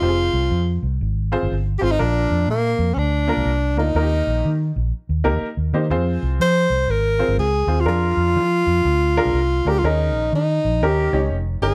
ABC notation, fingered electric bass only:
X:1
M:4/4
L:1/16
Q:"Swing" 1/4=122
K:Bbdor
V:1 name="Fingered electric bass" clef=bass
F,,,2 C,,2 F,,2 C,,2 A,,,3 G,,, G,,,2 A,,,2 | B,,,2 F,,2 B,,2 F,,2 =D,,3 C,, C,,2 D,,2 | E,,2 B,,,2 E,2 B,,,2 z E,, D,, E,, z E,, E,2 | F,,2 C,,2 F,2 C,,2 A,,,3 G,,, D,,2 E,,2 |
F,,2 F,,2 F,2 F,,2 =D,,3 C,, C,,2 D,,2 | E,,2 B,,,2 E,2 B,,,2 E,,2 D,,2 F,,,2 G,,,2 |]